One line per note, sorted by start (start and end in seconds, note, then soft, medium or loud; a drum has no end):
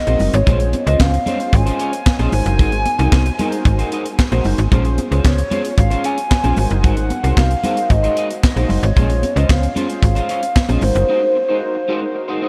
0.00 0.36 D#5 loud
0.07 0.16 A#1 medium
0.07 0.19 G#3 medium
0.07 0.36 C4 medium
0.07 0.36 D#4 medium
0.07 0.19 D#4 medium
0.07 0.36 F#4 medium
0.07 0.20 F#4 medium
0.07 0.36 A#4 medium
0.07 0.20 C5 medium
0.07 closed hi-hat medium
0.07 muted conga soft
0.07 high conga medium
0.19 0.30 F#1 medium
0.19 muted clean electric guitar stroke soft
0.19 open hi-hat medium
0.19 low conga medium
0.33 0.43 G#1 loud
0.33 0.87 C#5 loud
0.33 muted clean electric guitar stroke medium
0.33 closed hi-hat medium
0.46 0.75 A#1 loud
0.46 0.63 G#3 medium
0.46 0.75 C#4 medium
0.46 0.60 C#4 medium
0.46 0.76 F4 medium
0.46 0.59 F4 loud
0.46 0.76 G#4 medium
0.46 0.76 C5 medium
0.46 0.58 C5 loud
0.46 kick loud
0.46 closed hi-hat medium
0.46 low conga medium
0.60 muted clean electric guitar stroke soft
0.60 closed hi-hat soft
0.73 muted clean electric guitar stroke soft
0.73 closed hi-hat medium
0.73 high conga medium
0.86 0.96 C#2 loud
0.86 0.99 G#3 medium
0.86 1.15 C#4 medium
0.86 0.99 C#4 medium
0.86 1.15 F4 medium
0.86 1.00 F4 medium
0.86 1.16 G#4 medium
0.86 0.99 C5 medium
0.86 1.16 C5 medium
0.86 1.03 D#5 medium
0.86 closed hi-hat medium
0.99 1.18 C#2 loud
0.99 1.55 F5 loud
0.99 muted clean electric guitar stroke soft
0.99 kick loud
0.99 snare loud
0.99 clap loud
0.99 muted conga soft
0.99 high conga medium
1.13 muted clean electric guitar stroke soft
1.13 closed hi-hat medium
1.26 1.42 G#3 medium
1.26 1.93 C#4 medium
1.26 1.40 C#4 loud
1.26 1.93 F4 medium
1.26 1.39 F4 loud
1.26 1.93 G#4 medium
1.26 1.93 C5 medium
1.26 1.39 C5 loud
1.26 closed hi-hat medium
1.26 high conga medium
1.26 low conga medium
1.40 muted clean electric guitar stroke medium
1.40 closed hi-hat medium
1.53 1.71 G#1 loud
1.53 2.33 G#5 loud
1.53 muted clean electric guitar stroke soft
1.53 kick loud
1.53 closed hi-hat medium
1.53 muted conga soft
1.66 1.78 G#3 medium
1.66 1.79 C#4 medium
1.66 1.79 F4 medium
1.66 1.81 C5 loud
1.66 closed hi-hat medium
1.79 1.92 G#3 medium
1.79 1.93 C#4 medium
1.79 1.92 F4 medium
1.79 1.92 C#5 medium
1.79 closed hi-hat medium
1.93 muted clean electric guitar stroke soft
1.93 closed hi-hat medium
2.06 muted clean electric guitar stroke soft
2.06 kick loud
2.06 snare loud
2.06 clap loud
2.06 muted conga soft
2.19 2.29 A#1 medium
2.19 2.31 G#3 medium
2.19 2.33 C#4 medium
2.19 2.33 F4 medium
2.19 2.33 G#4 medium
2.19 2.33 C5 medium
2.19 2.33 D#5 medium
2.19 closed hi-hat medium
2.19 muted conga soft
2.19 high conga medium
2.32 2.42 G#1 medium
2.32 2.86 D#4 medium
2.32 2.86 F#4 medium
2.32 2.86 A#4 medium
2.32 2.86 C5 medium
2.32 4.42 G#5 loud
2.32 muted clean electric guitar stroke soft
2.32 open hi-hat medium
2.32 low conga medium
2.46 2.61 F#1 medium
2.46 muted clean electric guitar stroke soft
2.46 closed hi-hat medium
2.59 2.87 G#1 medium
2.59 2.75 G#3 medium
2.59 2.72 D#4 loud
2.59 2.72 F#4 medium
2.59 2.71 C5 medium
2.59 kick loud
2.59 closed hi-hat medium
2.59 low conga medium
2.72 muted clean electric guitar stroke soft
2.72 closed hi-hat medium
2.72 muted conga soft
2.85 muted clean electric guitar stroke soft
2.85 closed hi-hat medium
2.85 high conga medium
2.99 3.08 C2 loud
2.99 3.11 G#3 medium
2.99 3.27 D#4 loud
2.99 3.11 D#4 medium
2.99 3.28 F#4 medium
2.99 3.12 F#4 medium
2.99 3.28 A#4 medium
2.99 3.12 C5 medium
2.99 3.28 C5 loud
2.99 closed hi-hat medium
3.12 3.31 C2 loud
3.12 muted clean electric guitar stroke soft
3.12 kick loud
3.12 snare loud
3.12 clap loud
3.12 high conga medium
3.26 muted clean electric guitar stroke soft
3.26 closed hi-hat medium
3.39 3.55 G#3 loud
3.39 4.05 D#4 loud
3.39 3.52 D#4 loud
3.39 4.06 F#4 medium
3.39 3.52 F#4 loud
3.39 4.06 A#4 medium
3.39 4.06 C5 loud
3.39 3.51 C5 loud
3.39 closed hi-hat medium
3.39 high conga medium
3.39 low conga medium
3.52 muted clean electric guitar stroke soft
3.52 closed hi-hat medium
3.65 3.84 G#1 loud
3.65 muted clean electric guitar stroke soft
3.65 kick loud
3.65 closed hi-hat loud
3.79 3.90 G#3 medium
3.79 3.91 D#4 medium
3.79 3.92 F#4 medium
3.79 3.93 C5 medium
3.79 closed hi-hat medium
3.92 4.05 G#3 medium
3.92 4.05 D#4 medium
3.92 4.05 F#4 medium
3.92 4.05 D#5 medium
3.92 closed hi-hat medium
4.05 muted clean electric guitar stroke soft
4.05 closed hi-hat medium
4.18 muted clean electric guitar stroke soft
4.18 kick loud
4.18 snare loud
4.18 clap medium
4.18 muted conga soft
4.32 4.41 A#1 medium
4.32 4.44 G#3 medium
4.32 4.60 D#4 loud
4.32 4.44 D#4 medium
4.32 4.60 F#4 medium
4.32 4.45 F#4 medium
4.32 4.61 A#4 medium
4.32 4.45 C5 medium
4.32 4.61 C5 loud
4.32 closed hi-hat medium
4.32 muted conga soft
4.32 high conga medium
4.44 4.54 F#1 medium
4.44 muted clean electric guitar stroke soft
4.44 open hi-hat medium
4.44 low conga medium
4.58 4.68 G#1 loud
4.58 muted clean electric guitar stroke soft
4.58 closed hi-hat medium
4.71 4.99 A#1 loud
4.71 4.88 G#3 medium
4.71 5.00 C#4 medium
4.71 4.85 C#4 medium
4.71 5.00 F4 medium
4.71 4.84 F4 loud
4.71 5.00 G#4 medium
4.71 5.00 C5 loud
4.71 4.84 C5 loud
4.71 kick loud
4.71 closed hi-hat medium
4.71 low conga medium
4.85 muted clean electric guitar stroke medium
4.85 closed hi-hat soft
4.98 muted clean electric guitar stroke soft
4.98 closed hi-hat medium
4.98 high conga medium
5.11 5.21 C#2 medium
5.11 5.23 G#3 medium
5.11 5.40 C#4 medium
5.11 5.24 C#4 medium
5.11 5.40 F4 medium
5.11 5.24 F4 medium
5.11 5.40 G#4 medium
5.11 5.24 C5 medium
5.11 5.40 C5 medium
5.11 closed hi-hat medium
5.24 5.43 C#2 loud
5.24 5.75 C#5 loud
5.24 muted clean electric guitar stroke soft
5.24 kick loud
5.24 snare loud
5.24 clap loud
5.24 muted conga soft
5.24 high conga medium
5.38 muted clean electric guitar stroke soft
5.38 closed hi-hat medium
5.38 muted conga soft
5.50 5.67 G#3 medium
5.50 6.18 C#4 medium
5.50 5.64 C#4 medium
5.50 6.18 F4 medium
5.50 5.64 F4 medium
5.50 6.18 G#4 medium
5.50 5.63 C5 loud
5.50 6.18 C#5 medium
5.50 closed hi-hat medium
5.50 high conga medium
5.50 low conga medium
5.64 muted clean electric guitar stroke soft
5.64 closed hi-hat medium
5.77 5.96 G#1 loud
5.77 6.07 F5 loud
5.77 muted clean electric guitar stroke soft
5.77 kick loud
5.77 closed hi-hat loud
5.90 6.02 G#3 medium
5.90 6.03 C#4 medium
5.90 6.04 F4 medium
5.90 6.05 C5 medium
5.90 closed hi-hat medium
5.90 muted conga soft
6.04 6.17 G#3 medium
6.04 6.17 C#4 medium
6.04 6.17 F4 medium
6.04 6.17 C#5 medium
6.04 6.86 G#5 loud
6.04 closed hi-hat medium
6.17 muted clean electric guitar stroke soft
6.17 closed hi-hat medium
6.30 muted clean electric guitar stroke soft
6.30 kick loud
6.30 snare loud
6.30 clap loud
6.43 6.53 A#1 medium
6.43 6.56 G#3 medium
6.43 6.57 C#4 medium
6.43 6.57 F4 medium
6.43 6.58 G#4 medium
6.43 6.57 C5 medium
6.43 closed hi-hat medium
6.43 muted conga soft
6.43 high conga medium
6.56 6.67 G#1 medium
6.56 7.11 D#4 medium
6.56 7.11 F#4 medium
6.56 7.11 A#4 medium
6.56 7.11 C5 medium
6.56 muted clean electric guitar stroke soft
6.56 open hi-hat medium
6.56 low conga medium
6.70 6.86 F#1 medium
6.70 muted clean electric guitar stroke soft
6.70 closed hi-hat medium
6.83 7.12 G#1 loud
6.83 7.00 G#3 medium
6.83 6.97 D#4 medium
6.83 6.96 F#4 medium
6.83 6.96 C5 medium
6.83 7.37 F#5 loud
6.83 kick loud
6.83 closed hi-hat medium
6.83 low conga medium
6.97 muted clean electric guitar stroke medium
6.97 closed hi-hat soft
6.97 muted conga soft
7.10 muted clean electric guitar stroke soft
7.10 closed hi-hat medium
7.10 high conga medium
7.23 7.33 C2 medium
7.23 7.36 G#3 medium
7.23 7.52 D#4 medium
7.23 7.36 D#4 medium
7.23 7.52 F#4 medium
7.23 7.37 F#4 medium
7.23 7.53 A#4 medium
7.23 7.36 C5 medium
7.23 7.53 C5 medium
7.23 closed hi-hat medium
7.37 7.55 C2 loud
7.37 7.92 F5 loud
7.37 muted clean electric guitar stroke soft
7.37 kick loud
7.37 snare loud
7.37 clap loud
7.37 muted conga soft
7.37 high conga medium
7.50 muted clean electric guitar stroke soft
7.50 closed hi-hat medium
7.63 7.80 G#3 loud
7.63 8.30 D#4 medium
7.63 7.77 D#4 medium
7.63 8.30 F#4 medium
7.63 7.77 F#4 loud
7.63 8.30 A#4 medium
7.63 8.31 C5 medium
7.63 7.76 C5 loud
7.63 closed hi-hat medium
7.63 high conga medium
7.63 low conga medium
7.77 muted clean electric guitar stroke medium
7.77 closed hi-hat medium
7.90 8.09 G#1 loud
7.90 8.43 D#5 loud
7.90 muted clean electric guitar stroke soft
7.90 kick loud
7.90 closed hi-hat loud
7.90 muted conga soft
8.03 8.15 G#3 medium
8.03 8.16 D#4 medium
8.03 8.16 F#4 medium
8.03 8.18 C5 medium
8.03 closed hi-hat medium
8.16 8.29 G#3 medium
8.16 8.30 D#4 medium
8.16 8.29 F#4 medium
8.16 8.30 D#5 medium
8.16 closed hi-hat medium
8.30 muted clean electric guitar stroke medium
8.30 closed hi-hat medium
8.43 8.80 D#5 loud
8.43 muted clean electric guitar stroke soft
8.43 kick loud
8.43 snare loud
8.43 clap medium
8.43 muted conga soft
8.56 8.66 A#1 medium
8.56 8.68 G#3 medium
8.56 8.85 D#4 medium
8.56 8.69 D#4 medium
8.56 8.85 F#4 medium
8.56 8.69 F#4 medium
8.56 8.85 A#4 medium
8.56 8.70 C5 medium
8.56 8.85 C5 medium
8.56 closed hi-hat medium
8.56 muted conga soft
8.56 high conga medium
8.69 8.79 F#1 medium
8.69 muted clean electric guitar stroke soft
8.69 open hi-hat medium
8.69 low conga medium
8.83 8.92 G#1 loud
8.83 9.39 C#5 loud
8.83 muted clean electric guitar stroke soft
8.83 closed hi-hat medium
8.96 9.24 A#1 medium
8.96 9.12 G#3 medium
8.96 9.25 C#4 medium
8.96 9.10 C#4 medium
8.96 9.25 F4 medium
8.96 9.09 F4 medium
8.96 9.25 G#4 medium
8.96 9.25 C5 medium
8.96 9.09 C5 loud
8.96 kick loud
8.96 closed hi-hat medium
8.96 low conga medium
9.10 muted clean electric guitar stroke soft
9.10 closed hi-hat medium
9.10 muted conga soft
9.23 muted clean electric guitar stroke soft
9.23 closed hi-hat medium
9.23 high conga medium
9.36 9.45 C#2 loud
9.36 9.48 G#3 medium
9.36 9.65 C#4 medium
9.36 9.48 C#4 medium
9.36 9.65 F4 medium
9.36 9.49 F4 medium
9.36 9.65 G#4 medium
9.36 9.49 C5 medium
9.36 9.65 C5 medium
9.36 9.50 D#5 loud
9.36 closed hi-hat medium
9.49 9.68 C#2 medium
9.49 10.00 F5 loud
9.49 muted clean electric guitar stroke soft
9.49 kick loud
9.49 snare loud
9.49 clap loud
9.49 high conga medium
9.62 muted clean electric guitar stroke soft
9.62 closed hi-hat medium
9.75 9.92 G#3 medium
9.75 10.43 C#4 medium
9.75 9.89 C#4 loud
9.75 10.43 F4 medium
9.75 9.89 F4 loud
9.75 10.43 G#4 medium
9.75 10.43 C5 medium
9.75 9.88 C5 loud
9.75 closed hi-hat medium
9.75 high conga medium
9.75 low conga medium
9.89 muted clean electric guitar stroke soft
9.89 closed hi-hat medium
10.02 10.21 G#1 loud
10.02 10.85 F5 loud
10.02 muted clean electric guitar stroke soft
10.02 kick loud
10.02 closed hi-hat loud
10.02 muted conga soft
10.15 10.28 G#3 medium
10.15 10.28 C#4 medium
10.15 10.29 F4 medium
10.15 10.30 C5 medium
10.15 closed hi-hat medium
10.15 muted conga soft
10.29 10.42 G#3 medium
10.29 10.42 C#4 medium
10.29 10.42 F4 medium
10.29 10.42 C#5 medium
10.29 closed hi-hat medium
10.42 muted clean electric guitar stroke medium
10.42 closed hi-hat medium
10.55 muted clean electric guitar stroke soft
10.55 kick loud
10.55 snare loud
10.55 clap medium
10.69 10.78 A#1 medium
10.69 10.81 G#3 medium
10.69 10.82 C#4 medium
10.69 10.82 F4 medium
10.69 10.83 F4 medium
10.69 10.83 G#4 medium
10.69 10.82 C5 medium
10.69 10.83 D#5 medium
10.69 closed hi-hat medium
10.69 muted conga soft
10.69 high conga medium
10.81 10.91 G#1 medium
10.81 11.35 D#4 medium
10.81 11.35 F#4 medium
10.81 11.36 A#4 medium
10.81 11.36 C5 medium
10.81 12.49 C5 loud
10.81 muted clean electric guitar stroke soft
10.81 open hi-hat medium
10.81 low conga medium
10.95 11.05 F#1 medium
10.95 muted clean electric guitar stroke medium
10.95 closed hi-hat medium
11.09 11.25 G#3 medium
11.09 11.22 D#4 medium
11.09 11.22 F#4 medium
11.09 11.21 C5 medium
11.22 muted clean electric guitar stroke soft
11.36 muted clean electric guitar stroke soft
11.48 11.60 G#3 medium
11.48 11.77 D#4 loud
11.48 11.61 D#4 medium
11.48 11.77 F#4 medium
11.48 11.61 F#4 medium
11.48 11.77 A#4 medium
11.48 11.61 C5 medium
11.48 11.77 C5 loud
11.62 muted clean electric guitar stroke medium
11.75 muted clean electric guitar stroke soft
11.88 12.04 G#3 medium
11.88 12.49 D#4 loud
11.88 12.02 D#4 medium
11.88 12.49 F#4 medium
11.88 12.01 F#4 loud
11.88 12.49 A#4 medium
11.88 12.49 C5 loud
11.88 12.00 C5 loud
12.01 muted clean electric guitar stroke medium
12.15 muted clean electric guitar stroke soft
12.28 12.40 G#3 medium
12.28 12.41 D#4 medium
12.28 12.41 F#4 medium
12.28 12.43 C5 medium
12.41 12.49 G#3 medium
12.41 12.49 D#4 medium
12.41 12.49 F#4 medium
12.41 12.49 D#5 medium